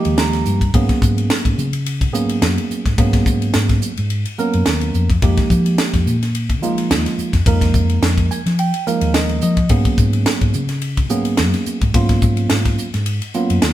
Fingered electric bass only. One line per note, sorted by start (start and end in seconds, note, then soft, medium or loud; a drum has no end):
0.05 0.43 D#2 medium
0.46 0.72 G2 loud
0.74 0.88 G#2 loud
1.02 1.28 G#2 medium
1.45 1.57 G#2 medium
1.58 2.14 C#3 loud
2.14 2.43 G#2 medium
2.42 2.56 F#2 loud
2.70 muted fingered electric bass stroke soft
2.85 2.97 G#2 medium
2.98 3.24 G#2 loud
3.26 3.52 G#2 medium
3.55 3.80 G#2 loud
3.98 4.24 G#2 medium
4.54 4.66 F#2 medium
4.67 4.92 D#2 medium
4.94 5.20 F2 medium
5.22 5.36 F2 medium
5.50 5.76 F3 medium
5.93 6.05 F2 medium
6.06 6.62 A#2 medium
6.62 6.92 F3 medium
6.90 7.04 D#2 loud
7.18 muted fingered electric bass stroke soft
7.33 7.45 F2 medium
7.46 7.72 F2 loud
7.74 8.00 F2 medium
8.02 8.28 F2 medium
8.46 8.71 F3 medium
9.01 9.39 D#2 medium
9.43 9.68 F3 loud
9.70 9.84 G#2 medium
9.98 10.24 G#2 medium
10.42 10.53 G#2 medium
10.55 11.11 C#3 loud
11.11 11.40 G#2 medium
11.39 11.52 F#2 loud
11.66 muted fingered electric bass stroke soft
11.81 11.93 G#2 medium
11.94 12.20 G#2 loud
12.22 12.48 G#2 medium
12.50 12.76 G#2 medium
12.94 13.19 G#2 medium
13.50 13.61 F#2 medium
13.63 13.73 D#2 medium